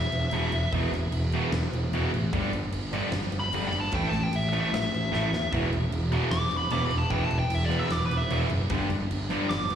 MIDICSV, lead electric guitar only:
0, 0, Header, 1, 2, 480
1, 0, Start_track
1, 0, Key_signature, 1, "minor"
1, 0, Tempo, 398936
1, 881, Time_signature, 4, 2, 24, 8
1, 11732, End_track
2, 0, Start_track
2, 0, Title_t, "Lead electric guitar"
2, 0, Program_c, 0, 29
2, 0, Note_on_c, 0, 76, 99
2, 852, Note_off_c, 0, 76, 0
2, 4085, Note_on_c, 0, 83, 102
2, 4237, Note_off_c, 0, 83, 0
2, 4429, Note_on_c, 0, 83, 81
2, 4569, Note_off_c, 0, 83, 0
2, 4582, Note_on_c, 0, 81, 95
2, 4750, Note_off_c, 0, 81, 0
2, 4750, Note_on_c, 0, 79, 93
2, 4889, Note_off_c, 0, 79, 0
2, 4928, Note_on_c, 0, 81, 87
2, 5092, Note_off_c, 0, 81, 0
2, 5092, Note_on_c, 0, 79, 92
2, 5221, Note_off_c, 0, 79, 0
2, 5244, Note_on_c, 0, 76, 99
2, 5377, Note_off_c, 0, 76, 0
2, 5401, Note_on_c, 0, 76, 98
2, 5531, Note_off_c, 0, 76, 0
2, 5545, Note_on_c, 0, 76, 92
2, 5687, Note_off_c, 0, 76, 0
2, 5710, Note_on_c, 0, 76, 93
2, 6625, Note_off_c, 0, 76, 0
2, 7593, Note_on_c, 0, 86, 115
2, 7906, Note_off_c, 0, 86, 0
2, 7911, Note_on_c, 0, 83, 105
2, 8069, Note_off_c, 0, 83, 0
2, 8088, Note_on_c, 0, 86, 100
2, 8239, Note_off_c, 0, 86, 0
2, 8239, Note_on_c, 0, 83, 88
2, 8394, Note_off_c, 0, 83, 0
2, 8401, Note_on_c, 0, 81, 94
2, 8549, Note_off_c, 0, 81, 0
2, 8549, Note_on_c, 0, 79, 97
2, 8712, Note_off_c, 0, 79, 0
2, 8712, Note_on_c, 0, 81, 97
2, 8870, Note_off_c, 0, 81, 0
2, 8891, Note_on_c, 0, 79, 94
2, 9079, Note_off_c, 0, 79, 0
2, 9079, Note_on_c, 0, 76, 90
2, 9209, Note_on_c, 0, 74, 89
2, 9215, Note_off_c, 0, 76, 0
2, 9370, Note_off_c, 0, 74, 0
2, 9370, Note_on_c, 0, 76, 96
2, 9527, Note_off_c, 0, 76, 0
2, 9527, Note_on_c, 0, 74, 102
2, 9692, Note_off_c, 0, 74, 0
2, 9692, Note_on_c, 0, 71, 92
2, 9835, Note_on_c, 0, 76, 112
2, 9841, Note_off_c, 0, 71, 0
2, 10070, Note_off_c, 0, 76, 0
2, 11422, Note_on_c, 0, 86, 115
2, 11732, Note_off_c, 0, 86, 0
2, 11732, End_track
0, 0, End_of_file